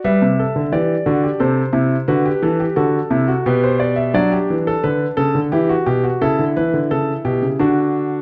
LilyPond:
<<
  \new Staff \with { instrumentName = "Grand piano" } { \time 3/4 \key g \major \tempo 4 = 88 << { e''4 d''4 c''4 | b'4 a'4 b'16 c''16 d''16 e''16 | d''16 g'8 a'16 b'8 a'8 g'8 g'8 | a'8 b'8 a'8 g'8 fis'4 | } \\ { b'8 a'8 g'8 fis'16 g'16 a'8 e'8 | fis'16 g'16 a'16 g'16 fis'8 e'16 fis'16 g'4 | d'2 e'16 fis'16 r16 fis'16 | e'2 d'4 | } >> }
  \new Staff \with { instrumentName = "Grand piano" } { \clef bass \time 3/4 \key g \major g16 c8 d16 e8 d8 c8 c8 | d8 e8 d8 c8 b,4 | fis8 e8 d8 cis16 d16 e8 b,8 | cis16 d16 e16 d16 cis8 b,16 cis16 d4 | }
>>